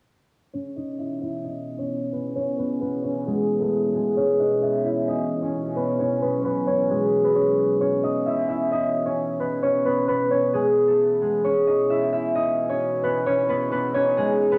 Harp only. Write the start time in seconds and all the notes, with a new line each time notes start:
0.54 C#4 C#5
0.76 D#4 D#5
0.99 E4 E5
1.22 E4 E5
1.44 D#4 D#5
1.79 C#4 C#5
2.13 B3 B4
2.35 C#4 C#5
2.58 B3 B4
2.81 B3 B4
3.04 C#4 C#5
3.26 G#3 G#4
3.60 A3 A4
3.94 G#3 G#4
4.17 C#4 C#5
4.40 D#4 D#5
4.63 E4 E5
4.85 E4 E5
5.08 D#4 D#5
5.42 C#4 C#5
5.76 B3 B4
5.99 C#4 C#5
6.22 B3 B4
6.44 B3 B4
6.67 C#4 C#5
6.90 G#3 G#4
7.24 B3 B4
7.35 C#4 C#5
7.81 C#4 C#5
8.03 D#4 D#5
8.26 E4 E5
8.49 E4 E5
8.71 D#4 D#5
9.06 C#4 C#5
9.40 B3 B4
9.63 C#4 C#5
9.85 B3 B4
10.08 B3 B4
10.31 C#4 C#5
10.54 G#3 G#4
10.88 A3 A4
11.22 G#3 G#4
11.44 C#4 C#5
11.67 D#4 D#5
11.90 E4 E5
12.13 E4 E5
12.35 D#4 D#5
12.70 C#4 C#5
13.04 B3 B4
13.26 C#4 C#5
13.49 B3 B4
13.72 B3 B4
13.94 C#4 C#5
14.17 G#3 G#4
14.51 B3 B4